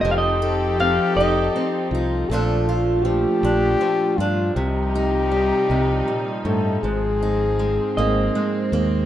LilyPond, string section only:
\new Staff \with { instrumentName = "String section" } { \time 6/8 \key bes \major \tempo 4. = 53 << { <f c' ees' a'>2. | a2. | <c g ees'>2. | <aes c'>2. | } \\ { g'2. | f2.~ | f2.~ | f2. | } >> }